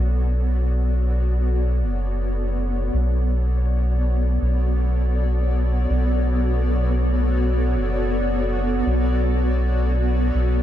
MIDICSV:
0, 0, Header, 1, 3, 480
1, 0, Start_track
1, 0, Key_signature, 2, "minor"
1, 0, Tempo, 740741
1, 1904, Time_signature, 4, 2, 24, 8
1, 6887, End_track
2, 0, Start_track
2, 0, Title_t, "Ambient pad"
2, 0, Program_c, 0, 92
2, 0, Note_on_c, 0, 59, 83
2, 0, Note_on_c, 0, 66, 87
2, 0, Note_on_c, 0, 69, 84
2, 0, Note_on_c, 0, 73, 81
2, 0, Note_on_c, 0, 74, 88
2, 6887, Note_off_c, 0, 59, 0
2, 6887, Note_off_c, 0, 66, 0
2, 6887, Note_off_c, 0, 69, 0
2, 6887, Note_off_c, 0, 73, 0
2, 6887, Note_off_c, 0, 74, 0
2, 6887, End_track
3, 0, Start_track
3, 0, Title_t, "Sub bass"
3, 0, Program_c, 1, 38
3, 0, Note_on_c, 1, 35, 104
3, 1182, Note_on_c, 1, 30, 94
3, 1192, Note_off_c, 1, 35, 0
3, 1883, Note_off_c, 1, 30, 0
3, 1902, Note_on_c, 1, 35, 106
3, 2843, Note_off_c, 1, 35, 0
3, 2862, Note_on_c, 1, 35, 94
3, 3803, Note_off_c, 1, 35, 0
3, 3822, Note_on_c, 1, 35, 103
3, 5021, Note_on_c, 1, 30, 97
3, 5031, Note_off_c, 1, 35, 0
3, 5723, Note_off_c, 1, 30, 0
3, 5742, Note_on_c, 1, 35, 103
3, 6683, Note_off_c, 1, 35, 0
3, 6702, Note_on_c, 1, 35, 89
3, 6887, Note_off_c, 1, 35, 0
3, 6887, End_track
0, 0, End_of_file